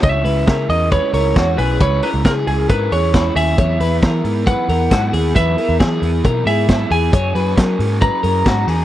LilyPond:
<<
  \new Staff \with { instrumentName = "Lead electric guitar" } { \time 4/4 \key cis \dorian \tempo 4 = 135 e''4. dis''8 cis''8 cis''4 b'8 | cis''8 b'8 ais'8 gis'8 b'8 cis''4 e''8~ | e''2 fis''2 | e''4 r4. e''4 gis''8~ |
gis''2 ais''2 | }
  \new Staff \with { instrumentName = "Clean electric guitar" } { \time 4/4 \key cis \dorian cis''8 b'8 ais'4 b'8 ais'8 fis'8 gis'8 | b'8 ais'8 gis'4 ais'8 gis'8 e'8 gis'8 | cis''8 b'8 ais'4 b'8 ais'8 fis'8 gis'8 | b'8 ais'8 gis'4 ais'8 gis'8 e'8 gis'8 |
cis''8 b'8 ais'4 b'8 ais'8 fis'8 gis'8 | }
  \new Staff \with { instrumentName = "Overdriven electric guitar" } { \time 4/4 \key cis \dorian <cis gis cis' e' gis'>8 <cis' e' gis'>8 <gis cis' e' gis'>8 <cis' e' gis'>8 <cis gis cis' e' gis'>8 <cis' e' gis'>8 <gis cis' e' gis'>8 <cis' e' gis'>8 | <cis gis cis' e' gis'>8 <cis' e' gis'>8 <gis cis' e' gis'>8 <cis' e' gis'>8 <cis gis cis' e' gis'>8 <cis' e' gis'>8 <gis cis' e' gis'>8 <cis' e' gis'>8 | <e fis b e' gis'>8 <b e' gis'>8 <fis b e' gis'>8 <b e' gis'>8 <e fis b e' gis'>8 <b e' gis'>8 <fis b e' gis'>8 <b e' gis'>8 | <e fis b e' gis'>8 <b e' gis'>8 <fis b e' gis'>8 <b e' gis'>8 <e fis b e' gis'>8 <b e' gis'>8 <fis b e' gis'>8 <b e' gis'>8 |
<fis cis' fis' gis'>8 <cis' fis' gis'>8 <fis cis' fis' gis'>8 <cis' fis' gis'>8 <fis cis' fis' gis'>8 <cis' fis' gis'>8 <fis cis' fis' gis'>8 <cis' fis' gis'>8 | }
  \new Staff \with { instrumentName = "Picked electric bass" } { \clef bass \time 4/4 \key cis \dorian cis,8 cis,8 cis8 e,8. r16 cis,8 e,8 b,,8 | cis,8 r16 cis,16 cis8 cis,8 gis,8 e,4 dis,8 | e,8 e,8 e8 gis,8. r16 e,8 gis,8 dis,8 | e,8 r16 e,16 e8 e,8 b,8 gis,4 e,8 |
fis,8 fis,8 fis8 gis,8. r16 fis,8 gis,8 e,8 | }
  \new DrumStaff \with { instrumentName = "Drums" } \drummode { \time 4/4 <hh bd>8 hho8 <hh bd sn>8 hho8 <hh bd>8 hho8 <hh bd sn>8 hho8 | <hh bd>8 hho8 <hh bd sn>8 hho8 <hh bd>8 hho8 <hh bd sn>8 hho8 | <hh bd>8 hho8 <hh bd sn>8 hho8 <hh bd>8 hho8 <hh bd sn>8 hho8 | <hh bd>8 hho8 <hh bd sn>8 hho8 <hh bd>8 hho8 <hh bd sn>8 hho8 |
<hh bd>8 hho8 <hh bd sn>8 hho8 <hh bd>8 hho8 <hh bd sn>8 hho8 | }
>>